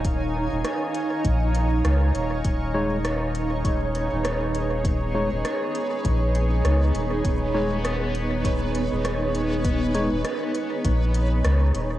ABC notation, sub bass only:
X:1
M:4/4
L:1/16
Q:"Swing 16ths" 1/4=100
K:Dbmix
V:1 name="Sub bass" clef=bass
E,,,3 E,,, z4 B,,,4 D,,2 E,,,2 | E,,,8 E,,,3 E,,,4- E,,,- | E,,,3 E,,, z4 B,,,4 D,,2 E,,,2 | E,,,8 E,,,3 E,,,4- E,,,- |
E,,,3 E,,, z4 B,,,4 D,,2 E,,,2 |]